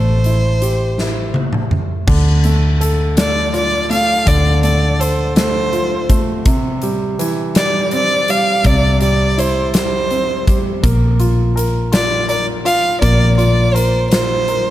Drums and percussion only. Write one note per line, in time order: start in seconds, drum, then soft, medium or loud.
0.24 closed hi-hat soft
0.62 closed hi-hat medium
0.98 snare soft
1.34 high tom medium
1.53 mid tom soft
1.71 mid tom medium
2.08 kick loud
2.08 crash loud
2.44 closed hi-hat soft
2.81 closed hi-hat medium
3.17 snare loud
3.17 closed hi-hat medium
3.54 closed hi-hat soft
3.91 closed hi-hat medium
4.27 kick loud
4.27 closed hi-hat loud
4.63 closed hi-hat medium
5.01 closed hi-hat medium
5.36 snare medium
5.36 closed hi-hat medium
5.73 closed hi-hat soft
6.10 kick medium
6.10 closed hi-hat medium
6.46 kick loud
6.46 closed hi-hat loud
6.82 closed hi-hat soft
7.19 closed hi-hat medium
7.55 snare loud
7.55 closed hi-hat medium
7.91 closed hi-hat soft
8.28 closed hi-hat medium
8.64 kick loud
8.64 closed hi-hat loud
9.01 closed hi-hat medium
9.39 closed hi-hat medium
9.74 snare medium
9.74 closed hi-hat medium
10.11 closed hi-hat soft
10.47 kick medium
10.47 closed hi-hat medium
10.84 kick loud
10.84 closed hi-hat medium
11.20 closed hi-hat medium
11.57 closed hi-hat medium
11.93 snare loud
11.93 closed hi-hat medium
12.29 closed hi-hat soft
12.66 closed hi-hat medium
13.02 kick loud
13.02 closed hi-hat medium
13.39 closed hi-hat soft
13.76 closed hi-hat medium
14.12 snare medium
14.12 closed hi-hat medium
14.48 closed hi-hat soft